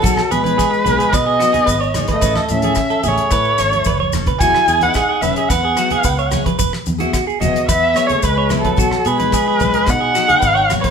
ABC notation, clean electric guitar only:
X:1
M:4/4
L:1/16
Q:1/4=110
K:E
V:1 name="Clean electric guitar"
F2 G B G z B G B G F G B c2 B | B A2 G z A G2 B2 c2 B c z B | F2 G B G G B G B G F G B c2 B | B z2 F F G F2 B2 c2 B c B B |
F2 G B G G B G z G F G B c2 B |]